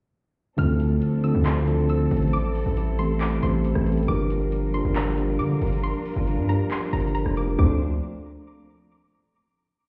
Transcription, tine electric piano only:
0.57 1.07 D3 loud
0.57 1.07 A3 loud
0.57 1.07 C4 medium
0.57 1.07 F4 medium
0.57 1.07 A4 loud
1.24 1.56 D3 medium
1.24 1.57 A3 medium
1.24 1.57 C4 medium
1.24 1.57 F4 medium
1.24 1.57 A4 medium
1.66 2.32 D3 medium
1.66 2.32 A3 medium
1.66 2.33 C4 medium
1.66 2.33 F4 medium
1.66 2.33 C5 medium
2.98 3.31 E3 medium
2.98 3.32 A3 medium
2.98 3.32 C4 medium
2.98 3.32 G4 medium
2.98 3.32 A4 medium
3.43 3.75 E3 medium
3.43 3.76 A3 medium
3.43 3.76 C4 medium
3.43 3.76 G4 medium
3.43 3.76 C5 medium
3.86 4.03 E3 medium
3.86 4.03 A3 medium
3.86 4.03 C4 medium
3.86 4.03 G4 medium
3.86 4.03 A4 medium
4.08 4.57 F3 loud
4.08 4.57 A#3 medium
4.08 4.58 D4 loud
4.08 4.58 G4 medium
4.08 4.58 A#4 loud
4.73 5.06 F3 medium
4.73 5.06 A#3 medium
4.73 5.07 D4 medium
4.73 5.07 G4 medium
4.73 5.07 A#4 medium
5.17 5.83 F3 medium
5.17 5.83 A#3 medium
5.17 5.83 D4 medium
5.17 5.84 G4 medium
5.17 5.84 A#4 medium
6.49 6.82 F3 medium
6.49 6.82 A#3 medium
6.49 6.82 D4 medium
6.49 6.82 G4 medium
6.49 6.82 A#4 medium
6.92 7.26 F3 medium
6.92 7.26 A#3 medium
6.92 7.26 D4 medium
6.92 7.26 G4 medium
6.92 7.26 A#4 medium
7.36 7.53 F3 medium
7.36 7.53 A#3 medium
7.36 7.53 D4 medium
7.36 7.53 G4 medium
7.36 7.53 A#4 medium
7.59 7.79 F3 medium
7.59 7.79 C4 medium
7.59 7.79 D4 medium
7.59 7.79 A4 medium

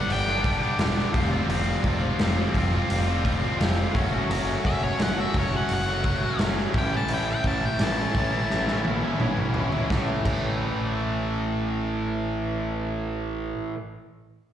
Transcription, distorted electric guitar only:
0.00 0.27 G3 medium
0.00 0.27 B3 medium
0.00 0.25 D4 medium
0.00 0.24 G4 medium
0.25 0.42 G3 medium
0.25 0.44 B3 medium
0.25 0.45 D4 medium
0.25 0.46 G4 medium
0.43 0.62 G3 medium
0.43 0.61 B3 medium
0.43 0.60 D4 medium
0.43 0.59 G4 medium
0.60 0.79 G3 medium
0.60 0.80 B3 medium
0.60 0.80 D4 medium
0.60 0.81 G4 medium
0.79 1.12 G2 medium
0.79 1.12 D3 medium
0.79 1.13 G3 medium
0.79 1.13 B3 medium
0.79 1.13 D4 medium
0.79 1.14 G4 medium
1.14 1.47 F3 medium
1.14 1.33 G3 medium
1.14 1.32 C4 medium
1.14 1.30 F4 medium
1.32 1.48 G3 medium
1.32 1.49 C4 medium
1.32 1.50 F4 medium
1.48 1.84 F3 medium
1.48 1.84 G3 medium
1.48 1.85 C4 medium
1.48 1.87 F4 medium
1.85 2.18 F3 medium
1.85 2.20 G3 medium
1.85 2.20 C4 medium
1.85 2.22 F4 medium
2.19 2.53 F3 medium
2.19 2.39 G3 medium
2.19 2.38 C4 medium
2.19 2.36 F4 medium
2.37 2.55 G3 medium
2.37 2.55 C4 medium
2.37 2.57 F4 medium
2.54 3.07 F3 medium
2.54 2.75 G3 medium
2.54 2.73 C4 medium
2.54 2.71 F4 medium
2.72 3.09 G3 medium
2.72 3.07 C4 medium
2.72 3.05 F4 medium
3.06 3.23 G3 medium
3.06 3.24 C4 medium
3.06 3.25 F4 medium
3.23 3.56 F3 medium
3.23 3.42 G3 medium
3.23 3.41 C4 medium
3.23 3.39 F4 medium
3.41 3.58 G3 medium
3.41 3.58 C4 medium
3.41 3.59 F4 medium
3.57 3.91 F3 medium
3.57 3.92 G3 medium
3.57 3.92 C4 medium
3.57 3.92 F4 medium
3.93 4.28 F#3 medium
3.93 4.14 A3 medium
3.93 4.13 C#4 medium
3.93 4.10 F#4 loud
4.11 4.30 A3 medium
4.11 4.31 C#4 medium
4.11 4.31 F#4 medium
4.29 4.63 F#3 medium
4.29 4.65 A3 medium
4.29 4.66 C#4 medium
4.29 4.66 F#4 medium
4.64 4.97 F#3 medium
4.64 5.00 A3 medium
4.64 5.01 C#4 medium
4.64 5.01 F#4 medium
4.98 5.33 F#3 medium
4.98 5.19 A3 medium
4.98 5.18 C#4 loud
4.98 5.15 F#4 medium
5.17 5.36 A3 medium
5.17 5.36 C#4 medium
5.17 5.37 F#4 medium
5.35 5.87 F#3 medium
5.35 5.55 A3 medium
5.35 5.54 C#4 medium
5.35 5.51 F#4 medium
5.52 5.90 A3 medium
5.52 5.88 C#4 medium
5.52 5.86 F#4 medium
5.87 6.05 A3 soft
5.87 6.06 C#4 medium
5.87 6.06 F#4 medium
6.04 6.39 F#3 medium
6.04 6.26 A3 medium
6.04 6.24 C#4 medium
6.04 6.22 F#4 medium
6.23 6.41 A3 soft
6.23 6.42 C#4 medium
6.23 6.42 F#4 medium
6.40 6.73 F#3 medium
6.40 6.76 A3 medium
6.40 6.76 C#4 medium
6.40 6.74 F#4 medium
6.75 7.08 A2 medium
6.75 7.09 E3 medium
6.75 6.93 A3 medium
6.75 6.92 C#4 medium
6.75 6.90 E4 medium
6.91 7.09 A3 medium
6.91 7.11 C#4 medium
6.91 7.11 E4 medium
7.09 7.77 A2 medium
7.09 7.44 E3 medium
7.09 7.45 A3 medium
7.09 7.46 C#4 medium
7.09 7.47 E4 medium
7.45 7.78 E3 medium
7.45 7.79 A3 medium
7.45 7.80 C#4 medium
7.45 7.81 E4 medium
7.79 8.32 A2 medium
7.79 8.12 E3 medium
7.79 7.99 A3 medium
7.79 7.97 C#4 medium
7.79 7.95 E4 medium
7.96 8.13 A3 medium
7.96 8.15 C#4 medium
7.96 8.16 E4 medium
8.13 8.67 E3 medium
8.13 8.33 A3 medium
8.13 8.32 C#4 medium
8.13 8.30 E4 medium
8.31 8.68 A3 medium
8.31 8.67 C#4 medium
8.31 8.65 E4 medium
8.66 8.84 A3 soft
8.66 8.85 C#4 medium
8.66 8.86 E4 medium
8.84 9.19 E3 medium
8.84 9.03 A3 medium
8.84 9.02 C#4 medium
8.84 9.00 E4 medium
9.01 9.20 A3 soft
9.01 9.21 C#4 soft
9.01 9.22 E4 medium
9.20 9.88 A2 medium
9.20 9.54 E3 medium
9.20 9.55 A3 medium
9.20 9.56 C#4 medium
9.20 9.57 E4 medium
9.55 9.88 E3 medium
9.55 9.75 A3 medium
9.55 9.73 C#4 medium
9.55 9.72 E4 medium
9.73 9.90 A3 soft
9.73 9.89 C#4 medium
9.73 9.88 E4 medium
9.90 10.24 A2 medium
9.90 10.27 E3 medium
9.94 10.28 A3 medium
10.25 13.75 A2 medium
10.25 13.77 E3 medium
10.25 13.78 A3 medium

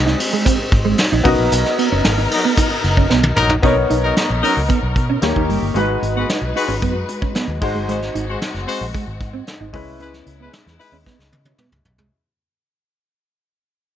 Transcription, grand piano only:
0.00 1.21 C4 medium
0.00 1.21 D#4 medium
0.00 1.21 F#4 medium
0.00 1.22 G#4 medium
0.00 1.22 D#5 medium
0.00 1.27 G#5 medium
1.24 3.32 B3 medium
1.24 3.33 D#4 medium
1.24 3.33 F#4 medium
1.24 3.33 A#4 medium
1.24 3.34 D#5 medium
3.62 5.19 B3 medium
3.62 5.19 D#4 medium
3.62 5.20 A#4 medium
3.62 5.20 C#5 medium
5.22 5.75 A#3 medium
5.22 5.74 D#4 medium
5.22 5.76 G4 medium
5.22 5.76 C#5 medium
5.74 7.57 G#3 medium
5.74 7.57 D#4 medium
5.74 7.58 F#4 medium
5.74 7.58 B4 medium
7.61 9.69 G#3 medium
7.61 9.70 D#4 medium
7.61 9.70 F#4 medium
7.61 9.71 C5 medium
9.73 11.81 G#3 medium
9.73 11.82 C#4 medium
9.73 11.82 E4 medium
9.73 11.82 B4 medium

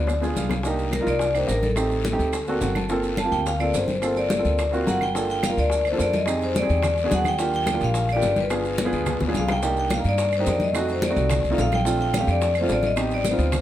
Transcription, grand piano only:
0.00 0.12 B3 medium
0.00 0.12 D4 medium
0.00 0.12 F4 medium
0.00 0.13 B4 medium
0.21 0.51 B3 medium
0.21 0.52 D4 medium
0.21 0.52 F4 medium
0.21 0.52 G#4 medium
0.21 0.36 G#5 medium
0.38 0.63 F5 medium
0.65 0.89 A#3 medium
0.65 0.90 D4 medium
0.65 0.90 D#4 medium
0.65 0.90 G4 medium
1.00 1.24 A#3 medium
1.00 1.25 D4 medium
1.00 1.25 D#4 medium
1.00 1.26 F4 medium
1.34 1.64 A#3 medium
1.34 1.64 D4 medium
1.34 1.65 D#4 medium
1.34 1.65 G4 medium
1.75 2.01 A3 medium
1.75 2.02 C4 medium
1.75 2.02 D#4 medium
1.75 2.02 G4 medium
2.12 2.33 A3 medium
2.12 2.33 C4 medium
2.12 2.34 D#4 medium
2.12 2.34 G4 medium
2.47 2.77 A#3 medium
2.47 2.78 C4 medium
2.47 2.78 F#4 medium
2.47 2.78 A4 medium
2.47 2.61 D5 medium
2.63 2.76 F#5 medium
2.76 2.89 A5 medium
2.89 3.14 A#3 medium
2.89 3.15 C4 medium
2.89 3.15 F4 medium
2.89 3.15 A4 medium
3.24 3.49 A#3 medium
3.24 3.50 C4 medium
3.24 3.50 F4 medium
3.24 3.50 G4 medium
3.60 3.90 A#3 medium
3.60 3.90 C4 medium
3.60 3.90 F4 medium
3.60 3.91 A4 medium
4.01 4.27 A#3 medium
4.01 4.27 C4 medium
4.01 4.28 F4 medium
4.01 4.28 A4 medium
4.37 4.59 A#3 medium
4.37 4.59 C4 medium
4.37 4.60 F4 medium
4.37 4.60 A4 medium
4.71 5.02 A#3 medium
4.71 5.02 C4 medium
4.71 5.03 F4 medium
4.71 5.03 F#4 medium
4.87 5.13 A#5 medium
5.14 5.39 A#3 medium
5.14 5.40 D4 medium
5.14 5.40 F4 medium
5.14 5.40 A4 medium
5.49 5.79 A#3 medium
5.49 5.79 D4 medium
5.49 5.80 F4 medium
5.49 5.80 A#4 medium
5.91 6.16 A#3 medium
5.91 6.17 D4 medium
5.91 6.17 F4 medium
5.91 6.18 A4 medium
6.27 6.52 C4 medium
6.27 6.52 D#4 medium
6.27 6.52 G4 medium
6.27 6.53 G#4 medium
6.62 6.83 C4 medium
6.62 6.84 D#4 medium
6.62 6.84 G4 medium
6.62 6.84 G#4 medium
7.04 7.29 B3 medium
7.04 7.29 D4 medium
7.04 7.30 F#4 medium
7.04 7.30 G#4 medium
7.39 7.64 A#3 medium
7.39 7.64 D4 medium
7.39 7.64 F4 medium
7.39 7.64 G4 medium
7.73 8.03 A#3 medium
7.73 8.03 D4 medium
7.73 8.04 F4 medium
7.73 8.04 G4 medium
8.15 8.40 A#3 medium
8.15 8.40 D4 medium
8.15 8.41 F4 medium
8.15 8.41 G4 medium
8.50 8.75 B3 medium
8.50 8.75 D4 medium
8.50 8.76 F4 medium
8.50 8.76 G#4 medium
8.85 9.15 B3 medium
8.85 9.15 D4 medium
8.85 9.15 F4 medium
8.85 9.16 G#4 medium
9.27 9.52 B3 medium
9.27 9.52 D4 medium
9.27 9.52 F4 medium
9.27 9.53 G#4 medium
9.62 9.87 A#3 medium
9.62 9.87 D4 medium
9.62 9.88 D#4 medium
9.62 9.88 G4 medium
9.97 10.27 A#3 medium
9.97 10.27 D4 medium
9.97 10.27 D#4 medium
9.97 10.28 A#4 medium
10.38 10.63 A#3 medium
10.38 10.64 D4 medium
10.38 10.64 D#4 medium
10.38 10.64 G4 medium
10.73 10.98 A3 medium
10.73 10.98 C4 medium
10.73 10.99 D#4 medium
10.73 10.99 F#4 medium
11.10 11.39 A3 medium
11.10 11.39 C4 medium
11.10 11.39 D#4 medium
11.10 11.39 F#4 medium
11.50 11.75 A3 medium
11.50 11.75 C4 medium
11.50 11.75 D#4 medium
11.50 11.76 F4 medium
11.84 12.09 A3 medium
11.84 12.10 C4 medium
11.84 12.10 D4 medium
11.84 12.10 F4 medium
12.19 12.49 A3 medium
12.19 12.49 C4 medium
12.19 12.49 D4 medium
12.19 12.50 G4 medium
12.61 12.86 A3 medium
12.61 12.86 C4 medium
12.61 12.86 D4 medium
12.61 12.87 F4 medium
12.96 13.21 B3 medium
12.96 13.21 C4 medium
12.96 13.21 D#4 medium
12.96 13.21 G4 medium
13.31 13.52 B3 medium
13.31 13.52 C4 medium
13.31 13.53 D#4 medium
13.31 13.53 F4 medium

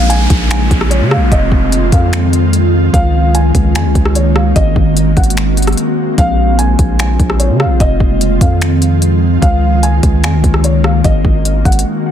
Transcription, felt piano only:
0.10 0.48 G#5 medium
0.51 0.89 G#5 medium
0.90 1.10 C#5 medium
1.11 1.31 F5 medium
1.32 1.89 D#5 loud
1.92 2.11 F5 medium
2.93 3.32 F5 loud
3.35 3.73 G#5 medium
3.75 4.13 G#5 medium
4.16 4.35 C#5 medium
4.36 4.55 F5 medium
4.56 5.13 D#5 loud
5.17 5.36 F#5 medium
6.18 6.56 F5 loud
6.59 6.97 G#5 medium
7.00 7.38 G#5 medium
7.39 7.59 C#5 medium
7.60 7.79 F5 medium
7.81 8.38 D#5 loud
8.41 8.60 F5 medium
9.42 9.80 F5 loud
9.83 10.21 G#5 medium
10.24 10.62 G#5 medium
10.64 10.83 C#5 medium
10.84 11.04 F5 medium
11.04 11.62 D#5 loud
11.65 11.85 F#5 medium

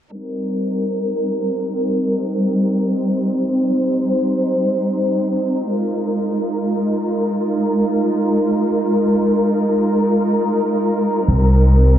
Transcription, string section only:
0.12 5.67 G3 medium
0.12 5.67 C4 medium
0.12 11.98 D#4 medium
0.12 2.89 A#4 medium
2.92 5.68 C5 medium
5.70 11.25 G#3 medium
5.70 11.25 F4 medium
5.70 11.98 A#4 medium
11.28 11.98 G3 medium
11.28 11.98 C4 medium

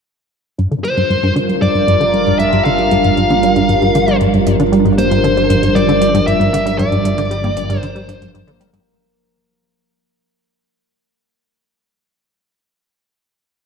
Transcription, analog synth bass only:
0.58 0.67 G2 medium
0.71 0.75 D3 medium
0.84 0.90 G3 medium
0.97 1.03 G2 medium
1.10 1.16 G2 medium
1.23 1.32 G2 loud
1.36 1.39 D3 medium
1.49 1.55 G3 medium
1.62 1.68 G2 loud
1.75 1.81 G2 medium
1.87 1.96 G2 loud
2.00 2.04 D3 loud
2.13 2.19 G3 medium
2.27 2.32 G2 loud
2.40 2.46 G2 medium
2.53 2.61 G2 medium
2.66 2.69 D3 loud
2.79 2.84 G3 medium
2.91 2.97 G2 medium
3.04 3.10 G2 medium
3.17 3.26 G2 medium
3.30 3.34 D3 loud
3.43 3.49 G3 medium
3.56 3.62 G2 medium
3.69 3.75 G2 medium
3.82 3.91 G2 loud
3.95 3.98 D3 loud
4.08 4.14 G3 medium
4.21 4.27 G2 medium
4.34 4.40 G2 medium
4.47 4.55 G2 medium
4.59 4.63 D3 loud
4.72 4.78 G3 medium
4.85 4.91 G2 medium
4.98 5.04 G2 medium
5.11 5.20 G2 loud
5.24 5.27 D3 medium
5.37 5.43 G3 medium
5.50 5.56 G2 medium
5.62 5.68 G2 medium
5.75 5.84 G2 medium
5.88 5.92 D3 loud
6.01 6.07 G3 medium
6.14 6.20 G2 loud
6.27 6.33 G2 medium
6.40 6.49 G2 loud
6.53 6.57 D3 loud
6.66 6.72 G3 medium
6.79 6.85 G2 loud
6.92 6.98 G2 medium
7.05 7.14 G2 medium
7.18 7.21 D3 loud
7.31 7.37 G3 medium
7.44 7.50 G2 loud
7.56 7.63 G2 medium
7.69 7.78 G2 medium
7.82 7.86 D3 loud
7.95 8.01 G3 medium
8.08 8.14 G2 loud
8.22 8.27 G2 medium
8.34 8.43 G2 loud
8.47 8.51 D3 loud
8.60 8.66 G3 medium
8.73 8.79 G2 loud

